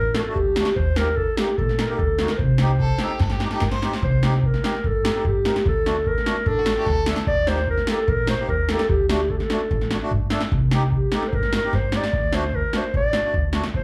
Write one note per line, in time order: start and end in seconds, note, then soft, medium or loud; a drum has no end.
0.00 0.20 A1 loud
0.00 0.16 A#4 medium
0.15 0.22 D4 medium
0.15 0.21 F#4 medium
0.15 0.22 A4 medium
0.15 snare medium
0.21 0.36 A4 medium
0.21 0.26 A#4 medium
0.28 0.38 A3 medium
0.28 0.38 D4 medium
0.28 0.38 F#4 medium
0.34 0.61 D2 medium
0.34 0.78 G4 medium
0.34 kick medium
0.56 0.68 A3 medium
0.56 0.68 D4 soft
0.56 0.68 F#4 medium
0.56 snare medium
0.65 snare medium
0.76 1.26 D#2 medium
0.76 0.99 C5 loud
0.76 kick medium
0.96 1.09 A#3 medium
0.96 1.09 D#4 medium
0.96 1.09 G4 medium
0.96 1.18 A#4 medium
0.96 snare medium
1.16 1.38 A4 medium
1.16 kick medium
1.37 1.50 A#3 medium
1.37 1.50 D#4 medium
1.37 1.59 G4 medium
1.37 1.49 G4 medium
1.37 snare medium
1.48 snare soft
1.57 1.83 A#1 medium
1.57 1.89 A4 medium
1.57 kick medium
1.69 snare soft
1.79 1.85 D#4 medium
1.79 1.85 A#4 medium
1.79 snare medium
1.87 2.00 A#3 medium
1.87 2.00 D#4 soft
1.87 2.00 G4 medium
1.87 1.96 A#4 medium
1.97 2.24 D2 medium
1.97 2.30 A4 medium
1.97 kick medium
2.19 2.30 A#3 medium
2.19 2.31 D#4 medium
2.19 2.31 F#4 medium
2.19 snare medium
2.28 2.39 A#4 medium
2.28 snare medium
2.37 2.88 C2 medium
2.37 3.61 C5 medium
2.37 kick medium
2.58 2.71 C4 medium
2.58 2.71 D#4 medium
2.58 2.72 G4 medium
2.58 snare medium
2.80 3.02 A4 medium
2.80 kick medium
2.98 3.12 C4 medium
2.98 3.22 G4 medium
2.98 3.12 A4 medium
2.98 snare medium
3.03 3.12 D#4 medium
3.19 3.45 G2 medium
3.19 3.33 A4 medium
3.19 kick medium
3.19 snare soft
3.30 3.53 G4 medium
3.30 snare soft
3.40 3.48 D#4 medium
3.40 3.48 G4 medium
3.40 snare medium
3.51 3.63 C4 medium
3.51 3.63 D#4 medium
3.51 3.63 G4 medium
3.51 3.61 A4 medium
3.51 snare soft
3.60 3.87 G2 medium
3.60 3.70 A#4 medium
3.60 kick medium
3.60 snare medium
3.71 4.00 C5 medium
3.71 snare medium
3.82 3.93 C4 medium
3.82 3.93 D#4 medium
3.82 3.93 G4 medium
3.82 snare medium
3.93 snare medium
4.02 4.51 C2 medium
4.02 4.37 C5 medium
4.02 kick medium
4.23 4.34 C4 medium
4.23 4.34 D#4 medium
4.23 4.34 G4 medium
4.23 snare medium
4.33 snare soft
4.37 4.48 C5 medium
4.43 4.88 A#4 medium
4.43 kick medium
4.54 snare soft
4.64 4.74 C4 medium
4.64 4.74 D#4 medium
4.64 4.74 G4 medium
4.64 snare medium
4.75 snare soft
4.84 5.09 G2 medium
4.84 5.28 A4 medium
4.84 kick medium
5.04 5.10 D#4 medium
5.04 5.10 G4 medium
5.04 snare medium
5.14 5.25 C4 medium
5.14 5.25 D#4 medium
5.14 5.25 G4 medium
5.25 5.49 G2 medium
5.25 5.66 G4 medium
5.25 kick medium
5.45 5.56 C4 medium
5.45 5.56 D#4 medium
5.45 5.56 A#4 medium
5.45 snare medium
5.56 snare medium
5.66 6.15 D2 medium
5.66 6.09 A4 medium
5.66 kick medium
5.86 5.96 A3 medium
5.86 5.96 D4 medium
5.86 5.97 F#4 medium
5.86 snare medium
6.06 6.49 A#4 medium
6.06 kick medium
6.18 snare soft
6.26 6.37 A3 medium
6.26 6.36 D4 medium
6.26 6.37 F#4 medium
6.26 snare medium
6.36 snare soft
6.46 6.71 A1 medium
6.46 6.60 D4 medium
6.46 7.08 A4 loud
6.46 kick medium
6.59 6.77 F#4 medium
6.66 6.72 D4 medium
6.66 6.72 F#4 medium
6.66 snare medium
6.77 6.88 A3 medium
6.77 6.88 D4 soft
6.77 6.88 F#4 medium
6.77 6.87 G4 medium
6.86 7.11 D2 medium
6.86 7.17 A4 medium
6.86 kick medium
6.86 snare soft
7.06 7.18 A3 medium
7.06 7.18 D4 medium
7.06 7.18 A4 medium
7.06 snare medium
7.16 snare medium
7.27 7.76 D#2 medium
7.27 7.50 D5 loud
7.27 kick medium
7.47 7.58 A#3 medium
7.47 7.59 D#4 medium
7.47 7.59 G4 medium
7.47 7.69 C5 loud
7.47 snare medium
7.57 snare soft
7.68 7.91 A#4 medium
7.68 kick medium
7.77 snare soft
7.87 7.99 A#3 medium
7.87 7.99 D#4 medium
7.87 7.99 G4 medium
7.87 8.11 A4 medium
7.87 snare medium
8.08 8.33 A#1 loud
8.08 8.29 A#4 medium
8.08 kick medium
8.27 8.34 D#4 medium
8.27 8.35 F#4 medium
8.27 8.49 C5 loud
8.27 snare medium
8.39 8.50 A#3 medium
8.39 8.50 D#4 soft
8.39 8.50 G4 medium
8.49 8.73 D#2 medium
8.49 8.71 A#4 medium
8.49 kick medium
8.69 8.81 A#3 medium
8.69 8.81 D#4 medium
8.69 8.81 G4 medium
8.69 8.91 A4 medium
8.69 snare medium
8.79 snare medium
8.89 9.38 D2 medium
8.89 9.08 G4 medium
8.89 kick medium
9.09 9.20 A3 medium
9.09 9.21 D4 medium
9.09 9.21 F#4 medium
9.09 9.32 G4 medium
9.09 snare medium
9.30 9.39 A4 medium
9.30 kick medium
9.38 9.45 G4 medium
9.38 snare soft
9.43 9.91 A4 medium
9.50 9.61 A3 medium
9.50 9.61 D4 medium
9.50 9.61 F#4 medium
9.50 snare medium
9.71 9.95 A1 loud
9.71 kick medium
9.81 snare soft
9.91 9.97 D4 medium
9.91 9.97 F#4 medium
9.91 snare medium
10.02 10.12 A3 medium
10.02 10.12 D4 medium
10.02 10.12 F#4 medium
10.11 10.36 G2 medium
10.11 kick medium
10.30 10.42 A3 medium
10.30 10.42 D4 medium
10.30 10.42 A4 medium
10.30 snare medium
10.40 snare medium
10.52 11.00 C2 loud
10.52 kick medium
10.71 10.83 C4 medium
10.71 10.83 D#4 medium
10.71 10.83 G4 medium
10.71 snare medium
10.92 kick medium
10.97 11.18 G4 medium
11.12 11.24 C4 medium
11.12 11.23 D#4 medium
11.12 11.24 G4 medium
11.12 snare medium
11.16 11.30 A4 medium
11.22 snare soft
11.28 11.36 C5 medium
11.33 11.57 G2 medium
11.33 11.54 A#4 medium
11.33 kick medium
11.43 snare soft
11.53 11.59 D#4 medium
11.53 11.59 F#4 medium
11.53 11.76 A#4 medium
11.53 snare medium
11.64 11.74 C4 medium
11.64 11.74 D#4 soft
11.64 11.74 G4 medium
11.73 11.97 G2 medium
11.73 11.99 C5 medium
11.73 kick medium
11.73 snare soft
11.92 12.04 C4 medium
11.92 12.04 D#4 medium
11.92 12.04 G4 medium
11.92 snare medium
11.97 12.36 D5 loud
12.04 snare medium
12.13 12.62 D2 medium
12.13 kick medium
12.33 12.44 A3 medium
12.33 12.44 D4 medium
12.33 12.44 F#4 medium
12.33 12.57 C5 medium
12.33 snare medium
12.54 12.79 A#4 medium
12.54 kick medium
12.73 12.84 A3 medium
12.73 12.84 D4 medium
12.73 12.84 F#4 medium
12.73 snare medium
12.77 12.96 C5 medium
12.94 13.18 A1 medium
12.94 13.52 D5 loud
12.94 kick medium
13.13 13.20 D4 medium
13.13 13.20 F#4 medium
13.13 snare medium
13.24 13.34 A3 medium
13.24 13.34 D4 soft
13.24 13.35 F#4 medium
13.34 13.58 D2 medium
13.34 kick medium
13.53 13.64 A3 medium
13.53 13.64 D4 medium
13.53 13.64 F#4 medium
13.53 snare medium
13.64 snare medium
13.74 13.84 D#2 medium
13.74 13.84 C5 medium
13.74 kick medium